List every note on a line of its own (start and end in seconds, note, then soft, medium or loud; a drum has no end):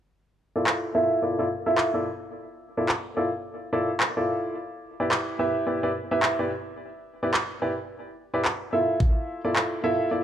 0.56 0.92 E4 medium
0.56 0.92 F4 medium
0.56 0.92 A4 medium
0.56 0.92 D5 medium
0.67 clap loud
0.95 1.20 E4 medium
0.95 1.20 F4 medium
0.95 1.20 A4 medium
0.95 1.20 E5 loud
1.22 1.37 E4 medium
1.22 1.36 F4 medium
1.22 1.37 A4 medium
1.22 1.37 D5 medium
1.39 1.46 E4 medium
1.39 1.46 F4 medium
1.39 1.46 A4 medium
1.39 1.46 D5 medium
1.66 1.90 E4 medium
1.66 1.90 F4 medium
1.66 1.90 A4 medium
1.66 1.90 E5 loud
1.78 clap loud
1.94 2.06 E4 medium
1.94 2.06 F4 medium
1.94 2.06 A4 medium
1.94 2.06 D5 medium
2.77 2.85 E4 medium
2.77 2.85 F4 medium
2.77 2.85 A4 medium
2.77 2.85 D5 medium
2.89 clap loud
3.17 3.27 E4 medium
3.17 3.27 F4 medium
3.17 3.27 A4 medium
3.17 3.27 D5 medium
3.73 3.89 E4 medium
3.73 3.89 F4 medium
3.73 3.89 A4 medium
3.73 3.89 D5 loud
4.00 clap loud
4.17 4.55 E4 medium
4.17 4.55 F4 medium
4.17 4.55 A4 medium
4.17 4.55 D5 medium
5.00 5.36 E4 medium
5.00 5.36 G4 medium
5.00 5.36 B4 medium
5.00 5.36 D5 medium
5.11 clap loud
5.39 5.64 E4 medium
5.39 5.64 G4 medium
5.39 5.64 B4 medium
5.39 5.64 E5 loud
5.67 5.81 E4 medium
5.67 5.81 G4 medium
5.67 5.81 B4 medium
5.67 5.81 D5 medium
5.83 5.90 E4 medium
5.83 5.90 G4 medium
5.83 5.90 B4 medium
5.83 5.90 D5 medium
6.11 6.35 E4 medium
6.11 6.35 G4 medium
6.11 6.35 B4 medium
6.11 6.35 E5 loud
6.22 clap loud
6.39 6.50 E4 medium
6.39 6.50 G4 medium
6.39 6.50 B4 medium
6.39 6.50 D5 medium
7.23 7.30 E4 medium
7.23 7.30 G4 medium
7.23 7.30 B4 medium
7.23 7.30 D5 medium
7.34 clap loud
7.62 7.72 E4 medium
7.62 7.72 G4 medium
7.62 7.72 B4 medium
7.62 7.72 D5 medium
8.34 8.41 E4 medium
8.34 8.41 G4 medium
8.34 8.41 B4 medium
8.34 8.41 D5 medium
8.45 clap loud
8.73 9.41 E4 medium
8.73 9.41 F4 medium
8.73 9.41 A4 medium
8.73 9.41 E5 medium
9.00 kick loud
9.45 9.81 E4 medium
9.45 9.81 F4 medium
9.45 9.81 A4 medium
9.45 9.81 D5 medium
9.56 clap loud
9.84 10.09 E4 medium
9.84 10.09 F4 medium
9.84 10.09 A4 medium
9.84 10.09 E5 loud
10.11 10.24 E4 medium
10.11 10.24 F4 medium
10.11 10.24 A4 medium
10.11 10.24 D5 medium